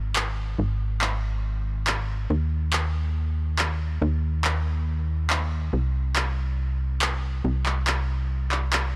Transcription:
0.00 0.56 G#1 medium
0.16 clap loud
0.59 2.28 G#1 medium
1.01 clap loud
1.87 clap loud
2.30 3.99 D#2 medium
2.73 clap loud
3.59 clap loud
4.02 5.71 D#2 medium
4.44 clap medium
5.30 clap loud
5.73 7.42 C2 medium
6.16 clap loud
7.02 clap loud
7.44 8.96 C2 medium
7.66 clap medium
7.87 clap loud
8.52 clap medium
8.73 clap loud

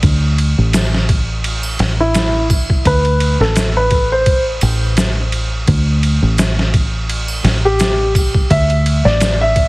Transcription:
0.03 0.54 D2 medium
0.03 kick loud
0.03 ride medium
0.38 ride medium
0.58 1.77 A1 loud
0.73 snare loud
0.73 ride medium
0.73 triangle medium
0.73 maracas medium
0.94 snare soft
1.09 kick medium
1.09 ride medium
1.44 ride medium
1.63 triangle medium
1.79 2.82 A1 medium
1.79 snare medium
1.79 ride medium
2.00 2.46 E4 medium
2.15 snare loud
2.15 ride medium
2.15 maracas medium
2.50 kick medium
2.50 ride medium
2.50 triangle medium
2.70 kick medium
2.85 3.36 D2 medium
2.85 3.35 B4 medium
2.85 kick loud
2.85 ride medium
3.05 ride soft
3.20 ride medium
3.40 4.59 A1 loud
3.40 3.72 A4 medium
3.40 snare soft
3.56 snare loud
3.56 ride medium
3.56 maracas medium
3.77 4.07 B4 medium
3.91 kick medium
3.91 ride medium
4.12 4.43 C5 medium
4.26 kick loud
4.26 ride medium
4.61 5.65 A1 medium
4.61 ride medium
4.61 triangle medium
4.97 snare loud
4.97 ride medium
4.97 maracas medium
5.32 ride medium
5.68 6.19 D2 loud
5.68 kick loud
5.68 ride medium
6.03 ride medium
6.22 7.41 A1 loud
6.38 snare loud
6.38 ride medium
6.38 maracas medium
6.59 snare soft
6.74 kick medium
6.74 ride medium
7.09 ride medium
7.28 triangle medium
7.44 8.47 A1 medium
7.44 snare medium
7.44 ride medium
7.65 8.11 G4 medium
7.79 snare loud
7.79 ride medium
7.79 maracas medium
8.15 kick medium
8.15 ride medium
8.15 triangle medium
8.34 kick loud
8.50 9.01 D2 loud
8.50 8.99 E5 loud
8.50 kick loud
8.50 ride medium
8.70 ride soft
8.86 ride medium
9.05 9.68 A1 loud
9.05 9.36 D5 medium
9.05 snare soft
9.21 snare loud
9.21 ride medium
9.21 maracas medium
9.41 9.68 E5 medium
9.56 kick medium
9.56 ride medium

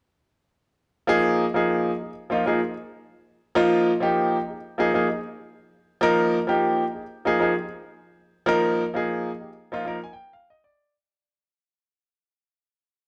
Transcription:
1.07 1.43 F3 loud
1.07 1.43 A#3 medium
1.07 1.44 D#4 medium
1.07 1.44 G#4 loud
1.54 1.89 F3 medium
1.54 1.90 A#3 medium
1.54 1.90 D#4 medium
1.54 1.90 G#4 medium
2.00 2.09 D#4 soft
2.00 2.10 G#4 soft
2.30 2.43 F3 medium
2.30 2.43 A#3 medium
2.30 2.44 D#4 medium
2.30 2.44 F4 medium
2.46 2.58 F3 medium
2.46 2.59 A#3 medium
2.46 2.59 D#4 medium
2.46 2.59 G#4 medium
2.63 2.71 D#4 soft
2.63 2.71 F4 soft
3.55 3.90 F3 loud
3.55 3.90 A#3 loud
3.55 3.90 D#4 loud
3.55 3.91 F4 loud
4.00 4.36 F3 medium
4.00 4.36 A#3 medium
4.00 4.36 D#4 medium
4.00 4.37 G4 medium
4.48 4.55 D#4 soft
4.48 4.57 G#4 soft
4.78 4.90 F3 medium
4.78 4.90 A#3 medium
4.78 4.91 D#4 medium
4.78 4.91 G#4 medium
4.93 5.05 F3 medium
4.93 5.06 A#3 medium
4.93 5.06 D#4 medium
4.93 5.06 G#4 medium
5.08 5.16 D#4 soft
5.08 5.17 G#4 soft
6.01 6.36 F3 loud
6.01 6.36 A#3 loud
6.01 6.37 D#4 loud
6.01 6.37 A#4 loud
6.47 6.82 F3 medium
6.47 6.82 A#3 medium
6.47 6.83 D#4 medium
6.47 6.83 G4 medium
6.93 7.01 D#4 soft
6.93 7.02 G#4 soft
7.25 7.37 F3 medium
7.25 7.37 A#3 medium
7.25 7.37 D#4 medium
7.25 7.38 G#4 medium
7.40 7.51 F3 medium
7.40 7.52 A#3 medium
7.40 7.52 D#4 medium
7.40 7.53 G#4 medium
7.55 7.63 D#4 soft
7.55 7.64 G4 soft
8.46 8.82 F3 loud
8.46 8.82 A#3 medium
8.46 8.83 D#4 loud
8.46 8.83 A#4 loud
8.94 9.28 F3 medium
8.94 9.29 A#3 medium
8.94 9.29 D#4 medium
8.94 9.30 G#4 medium
9.40 9.48 D#4 soft
9.40 9.48 G4 soft
9.72 9.83 F3 medium
9.72 9.83 A#3 medium
9.72 9.83 D#4 medium
9.72 9.84 F4 medium
9.85 9.97 F3 medium
9.85 9.98 A#3 medium
9.85 9.98 D#4 medium
9.85 9.98 A#4 medium
10.04 10.10 D#4 soft
10.04 10.10 F4 soft
10.04 10.12 G#5 medium
10.13 10.32 G5 medium
10.33 10.47 F5 medium
10.50 10.63 D#5 medium
10.64 10.92 D5 medium

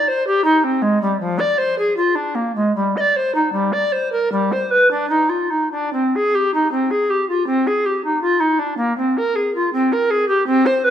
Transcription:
0.08 0.26 C5 medium
0.27 0.44 G4 soft
0.44 0.65 D#4 medium
0.64 0.84 C4 medium
0.82 1.01 G#3 soft
1.02 1.20 G3 soft
1.20 1.41 F3 medium
1.39 1.60 D5 medium
1.58 1.77 C5 medium
1.79 1.96 G#4 medium
1.97 2.17 F4 medium
2.15 2.36 D4 soft
2.35 2.55 A#3 soft
2.55 2.75 G#3 soft
2.75 2.98 G3 medium
2.96 3.18 D5 soft
2.96 3.01 D#5 soft
3.16 3.34 C5 soft
3.35 3.52 D#4 soft
3.52 3.74 G3 soft
3.72 3.94 D5 soft
3.92 4.11 C5 soft
4.12 4.31 A#4 soft
4.32 4.54 G3 medium
4.52 4.72 C5 soft
4.71 4.90 B4 soft
4.91 5.09 D4 soft
5.10 5.31 D#4 medium
5.29 5.52 F4 soft
5.50 5.71 D#4 soft
5.72 5.92 D4 soft
5.93 6.17 C4 soft
6.15 6.36 G#4 soft
6.35 6.53 G4 soft
6.54 6.71 D#4 soft
6.72 6.92 C4 soft
6.91 7.12 G#4 soft
7.10 7.28 G4 soft
7.29 7.46 F4 soft
7.47 7.68 C4 medium
7.67 7.87 G#4 soft
7.86 8.03 G4 soft
8.04 8.21 D#4 soft
8.22 8.41 F4 medium
8.40 8.60 D#4 soft
8.59 8.77 D4 soft
8.77 8.96 A#3 soft
8.97 9.19 C4 medium
9.17 9.37 A#4 medium
9.36 9.54 G#4 soft
9.55 9.72 F4 soft
9.73 9.94 C4 medium
9.92 10.12 A#4 medium
10.10 10.28 G#4 medium
10.28 10.46 G4 medium
10.47 10.67 C4 medium
10.66 10.86 C5 medium
10.84 10.90 B4 medium

